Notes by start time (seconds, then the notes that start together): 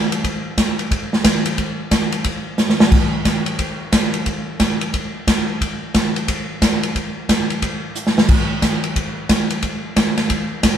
0.12 ride
0.24 kick, ride
0.57 kick, snare, hi-hat pedal, ride
0.79 ride
0.91 kick, ride
1.13 snare
1.24 kick, snare, hi-hat pedal, ride
1.45 ride
1.58 kick, ride
1.91 kick, snare, hi-hat pedal, ride
2.12 ride
2.24 kick, ride
2.58 snare, hi-hat pedal
2.69 snare
2.80 snare
2.92 kick, crash
3.25 kick, snare, hi-hat pedal, ride
3.46 ride
3.59 kick, ride
3.93 kick, snare, hi-hat pedal, ride
4.14 ride
4.26 kick, ride
4.60 kick, snare, hi-hat pedal, ride
4.81 ride
4.94 kick, ride
5.27 kick, snare, hi-hat pedal, ride
5.61 kick, ride
5.94 kick, snare, hi-hat pedal, ride
6.16 ride
6.28 kick, ride
6.62 kick, snare, hi-hat pedal, ride
6.83 ride
6.95 kick, ride
7.29 kick, snare, hi-hat pedal, ride
7.50 ride
7.62 kick, ride
7.95 hi-hat pedal
8.07 snare
8.18 snare
8.29 kick, crash
8.62 kick, snare, hi-hat pedal, ride
8.84 ride
8.96 kick, ride
9.29 kick, snare, hi-hat pedal, ride
9.50 ride
9.62 kick, ride
9.96 kick, snare, hi-hat pedal, ride
10.17 snare, ride
10.30 kick, ride
10.63 kick, snare, hi-hat pedal, ride